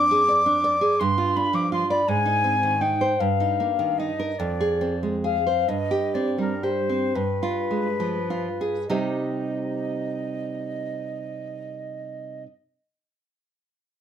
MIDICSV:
0, 0, Header, 1, 3, 480
1, 0, Start_track
1, 0, Key_signature, -3, "minor"
1, 0, Tempo, 717703
1, 673, Time_signature, 6, 3, 24, 8
1, 1631, Tempo, 755668
1, 2111, Tempo, 804290
1, 3071, Tempo, 873362
1, 3551, Tempo, 949367
1, 4031, Tempo, 1075269
1, 4511, Tempo, 1167315
1, 7104, End_track
2, 0, Start_track
2, 0, Title_t, "Flute"
2, 0, Program_c, 0, 73
2, 0, Note_on_c, 0, 86, 102
2, 662, Note_on_c, 0, 84, 86
2, 672, Note_off_c, 0, 86, 0
2, 908, Note_on_c, 0, 83, 87
2, 918, Note_off_c, 0, 84, 0
2, 1032, Note_on_c, 0, 86, 75
2, 1042, Note_off_c, 0, 83, 0
2, 1149, Note_off_c, 0, 86, 0
2, 1153, Note_on_c, 0, 84, 79
2, 1262, Note_off_c, 0, 84, 0
2, 1267, Note_on_c, 0, 83, 75
2, 1388, Note_on_c, 0, 80, 86
2, 1398, Note_off_c, 0, 83, 0
2, 1864, Note_on_c, 0, 79, 75
2, 1874, Note_off_c, 0, 80, 0
2, 2110, Note_on_c, 0, 77, 65
2, 2119, Note_off_c, 0, 79, 0
2, 2578, Note_on_c, 0, 75, 72
2, 2587, Note_off_c, 0, 77, 0
2, 2818, Note_on_c, 0, 74, 72
2, 2827, Note_off_c, 0, 75, 0
2, 3175, Note_off_c, 0, 74, 0
2, 3307, Note_on_c, 0, 77, 69
2, 3552, Note_on_c, 0, 75, 68
2, 3559, Note_off_c, 0, 77, 0
2, 3784, Note_on_c, 0, 74, 66
2, 3791, Note_off_c, 0, 75, 0
2, 3905, Note_off_c, 0, 74, 0
2, 3915, Note_on_c, 0, 70, 55
2, 4032, Note_on_c, 0, 72, 63
2, 4039, Note_off_c, 0, 70, 0
2, 4262, Note_on_c, 0, 71, 60
2, 4269, Note_off_c, 0, 72, 0
2, 4989, Note_off_c, 0, 71, 0
2, 4991, Note_on_c, 0, 75, 52
2, 6456, Note_off_c, 0, 75, 0
2, 7104, End_track
3, 0, Start_track
3, 0, Title_t, "Nylon-string guitar"
3, 0, Program_c, 1, 24
3, 0, Note_on_c, 1, 41, 66
3, 0, Note_on_c, 1, 62, 52
3, 74, Note_on_c, 1, 68, 61
3, 143, Note_off_c, 1, 62, 0
3, 190, Note_on_c, 1, 74, 51
3, 265, Note_off_c, 1, 68, 0
3, 307, Note_on_c, 1, 62, 56
3, 383, Note_off_c, 1, 74, 0
3, 428, Note_on_c, 1, 74, 55
3, 502, Note_off_c, 1, 62, 0
3, 543, Note_on_c, 1, 68, 54
3, 623, Note_off_c, 1, 74, 0
3, 647, Note_off_c, 1, 41, 0
3, 669, Note_off_c, 1, 68, 0
3, 673, Note_on_c, 1, 43, 67
3, 788, Note_on_c, 1, 65, 55
3, 913, Note_on_c, 1, 62, 55
3, 983, Note_off_c, 1, 65, 0
3, 1025, Note_on_c, 1, 53, 53
3, 1105, Note_off_c, 1, 62, 0
3, 1150, Note_on_c, 1, 65, 58
3, 1219, Note_off_c, 1, 53, 0
3, 1273, Note_on_c, 1, 74, 54
3, 1342, Note_off_c, 1, 65, 0
3, 1369, Note_off_c, 1, 43, 0
3, 1391, Note_off_c, 1, 74, 0
3, 1393, Note_on_c, 1, 44, 63
3, 1508, Note_on_c, 1, 63, 53
3, 1631, Note_on_c, 1, 60, 48
3, 1700, Note_off_c, 1, 63, 0
3, 1752, Note_on_c, 1, 51, 51
3, 1819, Note_off_c, 1, 60, 0
3, 1867, Note_on_c, 1, 63, 50
3, 1942, Note_off_c, 1, 51, 0
3, 1994, Note_on_c, 1, 72, 56
3, 2062, Note_off_c, 1, 63, 0
3, 2092, Note_off_c, 1, 44, 0
3, 2114, Note_off_c, 1, 72, 0
3, 2116, Note_on_c, 1, 43, 61
3, 2234, Note_on_c, 1, 63, 50
3, 2353, Note_on_c, 1, 58, 48
3, 2417, Note_off_c, 1, 63, 0
3, 2466, Note_on_c, 1, 51, 52
3, 2536, Note_off_c, 1, 58, 0
3, 2589, Note_on_c, 1, 63, 52
3, 2653, Note_off_c, 1, 51, 0
3, 2708, Note_on_c, 1, 70, 51
3, 2777, Note_off_c, 1, 63, 0
3, 2802, Note_off_c, 1, 43, 0
3, 2826, Note_off_c, 1, 70, 0
3, 2828, Note_on_c, 1, 41, 62
3, 2953, Note_on_c, 1, 68, 50
3, 3075, Note_on_c, 1, 60, 44
3, 3145, Note_off_c, 1, 68, 0
3, 3195, Note_on_c, 1, 56, 49
3, 3262, Note_off_c, 1, 60, 0
3, 3312, Note_on_c, 1, 68, 43
3, 3383, Note_off_c, 1, 56, 0
3, 3433, Note_off_c, 1, 68, 0
3, 3435, Note_on_c, 1, 72, 50
3, 3533, Note_off_c, 1, 41, 0
3, 3554, Note_off_c, 1, 72, 0
3, 3555, Note_on_c, 1, 43, 56
3, 3669, Note_on_c, 1, 67, 48
3, 3789, Note_on_c, 1, 60, 44
3, 3857, Note_off_c, 1, 67, 0
3, 3908, Note_on_c, 1, 55, 43
3, 3983, Note_off_c, 1, 60, 0
3, 4034, Note_on_c, 1, 67, 45
3, 4101, Note_off_c, 1, 55, 0
3, 4151, Note_on_c, 1, 60, 39
3, 4218, Note_off_c, 1, 67, 0
3, 4248, Note_off_c, 1, 43, 0
3, 4267, Note_off_c, 1, 60, 0
3, 4267, Note_on_c, 1, 43, 53
3, 4389, Note_on_c, 1, 65, 47
3, 4513, Note_on_c, 1, 56, 39
3, 4583, Note_off_c, 1, 65, 0
3, 4633, Note_on_c, 1, 53, 41
3, 4704, Note_off_c, 1, 56, 0
3, 4758, Note_on_c, 1, 65, 40
3, 4829, Note_off_c, 1, 53, 0
3, 4884, Note_on_c, 1, 68, 42
3, 4951, Note_off_c, 1, 65, 0
3, 4980, Note_off_c, 1, 43, 0
3, 4999, Note_off_c, 1, 68, 0
3, 5002, Note_on_c, 1, 48, 46
3, 5003, Note_on_c, 1, 55, 42
3, 5003, Note_on_c, 1, 63, 42
3, 5005, Note_on_c, 1, 67, 39
3, 5005, Note_on_c, 1, 75, 40
3, 5007, Note_on_c, 1, 72, 38
3, 6466, Note_off_c, 1, 48, 0
3, 6467, Note_off_c, 1, 55, 0
3, 6467, Note_off_c, 1, 63, 0
3, 6468, Note_off_c, 1, 67, 0
3, 6469, Note_off_c, 1, 75, 0
3, 6471, Note_off_c, 1, 72, 0
3, 7104, End_track
0, 0, End_of_file